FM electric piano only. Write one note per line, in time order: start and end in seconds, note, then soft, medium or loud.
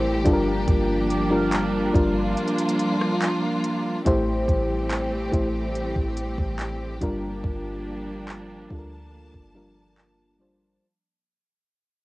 0.00 0.28 A3 loud
0.00 0.27 E4 medium
0.00 0.27 G4 medium
0.00 0.27 A4 loud
0.00 0.27 A#4 medium
0.00 0.30 C5 loud
0.24 1.09 G3 loud
0.24 1.10 D4 loud
0.24 1.10 F4 medium
0.24 0.33 A4 medium
0.33 1.14 A#4 loud
1.30 1.77 G3 medium
1.30 1.77 D4 medium
1.30 1.78 F4 medium
1.30 1.78 A#4 loud
1.93 3.18 G3 medium
1.93 3.18 D4 medium
1.93 3.18 F4 medium
1.93 3.19 A#4 loud
4.05 4.98 A3 loud
4.05 4.99 E4 medium
4.05 4.99 G4 medium
4.05 4.99 C5 loud
5.32 6.56 A3 medium
5.32 6.56 E4 medium
5.32 6.57 G4 medium
5.32 6.57 C5 medium
7.01 8.36 G3 medium
7.01 8.37 D4 medium
7.01 8.37 F4 medium
7.01 8.38 A#4 loud
8.70 9.32 G3 medium
8.70 9.32 D4 medium
8.70 9.33 F4 medium
8.70 8.78 A4 medium
8.79 9.36 A#4 medium
9.54 10.17 G3 medium
9.54 10.17 D4 medium
9.54 10.17 F4 medium
9.54 10.18 A#4 medium
10.39 10.70 G3 medium
10.39 10.71 D4 medium
10.39 10.71 F4 medium
10.39 10.71 C5 medium